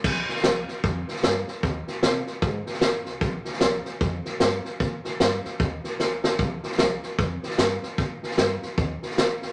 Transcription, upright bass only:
X:1
M:4/4
L:1/8
Q:"Swing" 1/4=151
K:Bbmix
V:1 name="Upright bass" clef=bass
B,,, z B,,, z F,, z G,, z | E,, z C, z A,, z G,, C,, | B,,, z B,,, z F,, z G,, z | B,, z G,, z E,, z D,, A,,, |
B,,, z B,,, z F,, z G,, z | B,, z G,, z E,, z D,, E,, |]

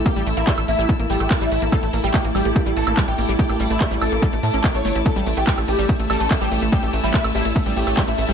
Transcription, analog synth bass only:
X:1
M:4/4
L:1/16
Q:1/4=144
K:none
V:1 name="Analog synth bass" clef=bass
z A,,, A,,, A,,, z A,,, A,,, A,,, z A,,, A,,, A,,, z A,,, A,,, A,,, | z A,,, A,,, A,,, z A,,, A,,, A,,, z A,,, A,,, A,,, z A,,, A,,, A,,, | z A,,, A,,, A,,, z A,,, A,,, A,,, z A,,, A,, A,,, z A,,, G,,, A,,, | z A,,, A,,, A,,, z A,,, A,,, A,,, z A,,, A,,, A,,, z A,,, A,,, A,,, |
z A,,, A,,, A,,, z A,,, A,,, A,,, z A,,, A,,, A,,, z A,,, A,,, A,,, |]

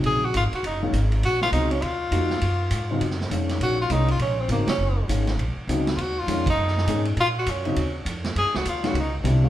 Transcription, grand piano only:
X:1
M:4/4
L:1/8
Q:"Swing" 1/4=202
K:Ebdor
V:1 name="Grand piano"
[D,G,CE] z4 [E,A,DF] z2 | z2 [D,G,CE] z3 [F,B,EG] z | z3 [D,G,CE] z2 [E,A,DF]2- | [E,A,DF] z [E,A,DF] z3 [D,G,CE] z |
z2 [E,A,DF] z3 [D,G,CE] z | z2 [E,A,DF] z3 [E,A,DA] z | z3 [D,G,CE] z4 | z3 [E,A,DF] z2 [=D,=G,C_F] [E,A,_D=F] |]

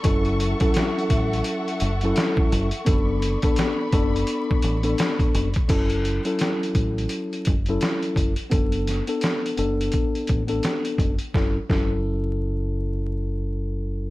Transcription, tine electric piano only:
X:1
M:4/4
L:1/16
Q:"Swing 16ths" 1/4=85
K:F#m
V:1 name="Tine electric piano"
[F,CEA]3 [F,CEA]6- [F,CEA] z [F,CEA]4 z | [B,DA]3 [B,DA]3 [B,DA]4- [B,DA] [B,DA]4 z | [F,CEA]3 [F,CEA]6- [F,CEA] z [F,CEA]4 z | [B,DA]3 [B,DA]3 [B,DA]4- [B,DA] [B,DA]4 z |
[F,CEA] z [F,CEA]12- [F,CEA]2 |]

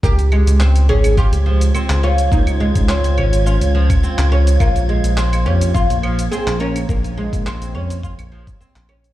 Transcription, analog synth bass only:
X:1
M:4/4
L:1/16
Q:"Swing 16ths" 1/4=105
K:Dblyd
V:1 name="Analog synth bass" clef=bass
D,,3 D,,3 A,,,3 D,,3 z D,,3 | D,,3 D,,3 A,,,3 D,,3 z D,,3 | B,,,3 B,,,3 F,,3 B,,,3 z B,,,3 | B,,,3 B,,,3 F,,3 B,,,3 z B,,,3 |]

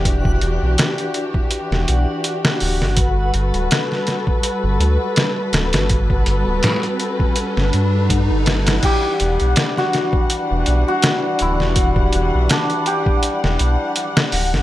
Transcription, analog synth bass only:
X:1
M:4/4
L:1/16
Q:"Swing 16ths" 1/4=82
K:Em
V:1 name="Analog synth bass" clef=bass
E,,,2 E,,, B,,, z4 z E,,, B,,, z3 D,,, G,,,- | G,,,2 G,,, D,,, z4 z G,,, D,, z3 D,,, G,,,- | G,,,2 G,,, D,,, z4 z G,,, G,,3 G,,,3 | z2 E,,, B,,, z4 z E,,, B,,, z3 D,,, E,,,- |
E,,,2 E,,, B,,, z4 z E,,, B,,, z3 D,,, G,,, |]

